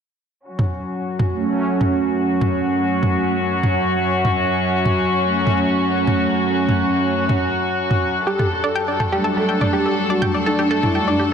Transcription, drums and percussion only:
0.59 mid tom
1.19 mid tom
1.81 mid tom
2.41 mid tom
3.03 mid tom
3.63 mid tom
4.25 mid tom
4.85 mid tom
5.47 mid tom
6.07 mid tom
6.69 mid tom
7.29 mid tom
7.91 mid tom
8.39 mid tom
9.00 mid tom
9.61 mid tom
10.22 mid tom
10.83 mid tom

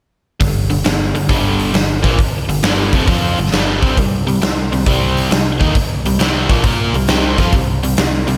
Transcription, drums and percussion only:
0.41 kick, open hi-hat
0.70 open hi-hat
0.85 snare, open hi-hat
1.15 open hi-hat
1.29 kick, open hi-hat
1.59 open hi-hat
1.74 snare, open hi-hat
2.04 kick, open hi-hat
2.19 kick, open hi-hat
2.49 open hi-hat
2.63 snare, open hi-hat
2.93 kick, open hi-hat
3.08 kick, open hi-hat
3.37 open hi-hat
3.46 snare
3.52 snare, open hi-hat
3.83 kick, open hi-hat
3.97 kick, open hi-hat
4.28 open hi-hat
4.42 snare, open hi-hat
4.73 open hi-hat
4.86 kick, open hi-hat
5.17 open hi-hat
5.31 snare, open hi-hat
5.61 kick, open hi-hat
5.75 kick, open hi-hat
6.05 open hi-hat
6.20 snare, open hi-hat
6.50 kick, open hi-hat
6.64 kick, open hi-hat
6.94 open hi-hat
7.07 snare, open hi-hat
7.38 kick, snare, open hi-hat
7.52 kick, open hi-hat
7.83 open hi-hat
7.97 snare, open hi-hat
8.28 open hi-hat

